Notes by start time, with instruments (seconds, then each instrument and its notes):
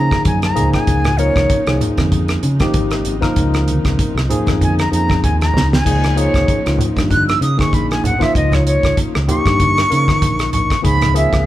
Already playing: string section C#3 G#3 D#4, tine electric piano F3 A#3 D#4 G#4, flute A#5
0.11 muted fingered electric bass stroke, kick, cross-stick, high conga
0.25 fingered electric bass F#2, flute G#5, kick, closed hi-hat
0.42 flute A#5, cross-stick, closed hi-hat
0.54 fingered electric bass C#2, string section C3 F3, tine electric piano F3 A#3 D#4 G#4, closed hi-hat, low conga
0.73 flute G#5, kick, cross-stick, closed hi-hat
0.87 fingered electric bass C#2, kick, closed hi-hat
1.04 cross-stick, closed hi-hat, low conga
1.18 tine electric piano F3 A#3 D#4 A#4, flute C#5, closed hi-hat
1.36 fingered electric bass C#2, kick, cross-stick, closed hi-hat
1.50 kick, closed hi-hat
1.67 fingered electric bass C2, tine electric piano F3 A#3 D#4 G#4, cross-stick, closed hi-hat
1.81 closed hi-hat, low conga
1.98 fingered electric bass F2, kick, cross-stick, closed hi-hat, high conga
2.12 kick, closed hi-hat, high conga
2.28 cross-stick, closed hi-hat
2.43 fingered electric bass C#3, closed hi-hat
2.60 tine electric piano F3 A#3 D#4 G4, kick, cross-stick, closed hi-hat, high conga
2.74 fingered electric bass G#1, kick, closed hi-hat
2.91 cross-stick, closed hi-hat
3.05 fingered electric bass G#1, closed hi-hat
3.21 tine electric piano F3 A#3 D#4 A#4, kick, cross-stick, closed hi-hat
3.36 fingered electric bass C#2, kick, closed hi-hat
3.54 cross-stick, closed hi-hat
3.68 closed hi-hat, high conga
3.85 fingered electric bass C#2, kick, cross-stick, closed hi-hat
3.99 muted fingered electric bass stroke, kick, closed hi-hat
4.15 fingered electric bass C2, cross-stick
4.29 tine electric piano F3 A#3 D#4 G#4, closed hi-hat, low conga
4.47 fingered electric bass F2, kick, cross-stick, closed hi-hat, high conga
4.61 flute G#5, kick, closed hi-hat, high conga
4.79 flute A#5, cross-stick, closed hi-hat
4.91 fingered electric bass F2, tine electric piano F3 A#3 D#4 G#4, flute A#5, closed hi-hat
5.09 kick, cross-stick, high conga
5.23 fingered electric bass D#2, flute G#5, kick, closed hi-hat
5.41 flute A#5, cross-stick, closed hi-hat
5.54 fingered electric bass C#2, snare, low conga
5.73 flute G#5, snare
5.85 fingered electric bass C#2, tine electric piano F3 A#3 D#4 G#4, string section A#3, kick, closed hi-hat, crash
6.04 cross-stick, closed hi-hat
6.16 tine electric piano F3 A#3 D#4 G#4, flute C#5, closed hi-hat
6.34 fingered electric bass C#2, kick, cross-stick, closed hi-hat
6.48 kick, closed hi-hat
6.65 fingered electric bass C#2, tine electric piano F3 A#3 D#4 F4, cross-stick, closed hi-hat
6.78 closed hi-hat, low conga
6.96 fingered electric bass G2, kick, cross-stick, closed hi-hat, high conga
7.10 flute F#6, kick, closed hi-hat, high conga
7.28 flute E6, cross-stick, closed hi-hat
7.41 fingered electric bass C#3, flute D#6, closed hi-hat
7.57 tine electric piano F3 A#3 D#4 G#4, flute C#6, kick, cross-stick, closed hi-hat, high conga
7.73 fingered electric bass A#1, flute B5, kick, closed hi-hat
7.91 flute G#5, cross-stick, closed hi-hat
8.03 fingered electric bass A#1, flute F#5, closed hi-hat, low conga
8.19 tine electric piano F3 A#3 D#4 F4, flute E5, kick, cross-stick, closed hi-hat
8.35 fingered electric bass C#2, flute D#5, kick, closed hi-hat
8.52 flute C#5, cross-stick, closed hi-hat, low conga
8.67 flute C#5, closed hi-hat
8.83 fingered electric bass C#2, kick, cross-stick, closed hi-hat
8.97 kick, closed hi-hat
9.15 fingered electric bass C#2, cross-stick
9.27 tine electric piano F3 A#3 D#4 G4, flute C#6, closed hi-hat, low conga
9.45 fingered electric bass G2, kick, cross-stick, closed hi-hat
9.60 kick, closed hi-hat, high conga
9.77 cross-stick, closed hi-hat
9.89 fingered electric bass C#3, tine electric piano F3 A#3 D#4 A#4, closed hi-hat
10.08 kick, cross-stick, high conga
10.22 fingered electric bass A#1, kick, closed hi-hat
10.39 cross-stick, closed hi-hat
10.53 fingered electric bass A#1, flute C#6, closed hi-hat, low conga
10.70 kick, cross-stick, closed hi-hat
10.82 fingered electric bass C#2, string section C3 C#3 D#3, tine electric piano F3 A#3 D#4 G#4, flute B5, kick, closed hi-hat
11.01 cross-stick, closed hi-hat, low conga
11.14 tine electric piano D#3 F3 A#3 G#4, flute E5, closed hi-hat
11.33 fingered electric bass C#2, kick, cross-stick, closed hi-hat